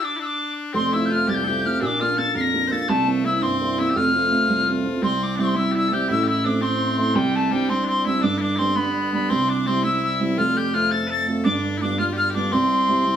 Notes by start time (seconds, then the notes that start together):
0.02 D4 D6
0.16 D4 E4
0.21 D6 E6
0.73 F1 F2 C4 C6
0.92 A3 C4 E4 F4 E6
1.05 G6
1.10 A3 C4 F4 F6
1.27 C2 G4 A6
1.34 G6
1.44 A3 C4 F4 G4 A4
1.64 A3 C4 F4 F6
1.81 A#1 A#2 D4 E6
1.86 D6
2.00 A#3 D4 F4 F6
2.17 A#3 D4 F4 A4 A6
2.34 F2 A#4 C7
2.41 A#6
2.54 A#3 D4 F4
2.68 A#3 D4 F4 A4 C5
2.72 A6
2.88 C2 C3 A3 A5
3.07 A#3 C4 E4
3.24 A#3 C4 E4 E6
3.41 G2 C4 C6
3.61 A#3 C4 E4
3.78 A#3 C4 E4 E6
3.90 G4
3.95 F1 F2 F4 F6
4.14 A3 C4 F4
4.31 A3 C4 F4
4.48 C2
4.68 A3 C4 F4
4.85 A3 C4 F4
5.02 C2 C4 C6
5.23 D6
5.36 G3 C4 D4 E4
5.40 C6
5.55 G3 C4 E4 E6
5.72 E4 G4
5.77 E6
5.89 G3 C4 G4 A4
5.93 E4 G6
6.08 A1 A2 E4 E6
6.24 G4
6.28 E4 E6
6.44 A3 C4 D4 E4 D6
6.61 A3 C4 E4 C6
6.98 A3 C4 E4 C6
7.14 C2 C3 G3 G5
7.35 A3 A5
7.51 G3 C4 D4 G5
7.69 G3 C4 D4 C6
7.85 C4 D4 C6
8.05 G3 C4 D4 E4 E6
8.21 G1 G2 D4 D6
8.38 D4 E4
8.43 D6
8.55 G3 B3 C4 E4 C6
8.59 D4
8.76 G3 B3 D4 B5
9.12 G3 B3 D4 B5
9.29 C2 C3 C4 C6
9.49 D4 D6
9.66 G3 C4 E4 C6
9.83 G3 C4 E4 E6
10.03 E6
10.20 G3 C4 E4
10.37 F1 F2 F4 F6
10.57 G4 G6
10.74 A3 C4 F4 F6
10.91 A3 C4 F4 A4 A6
11.07 A4 B4 A6
11.27 A3 C4 F4
11.44 G1 G2 D4 D6
11.77 D4 E4
11.81 G3 B3 F4 D6
11.98 G3 B3 F4 F6
12.13 F4 G4
12.17 F6
12.30 G4
12.34 G3 B3 D4 F4 D6
12.52 C2 C3 C4 C6
12.88 G3 C4 E4
13.05 G3 C4 E4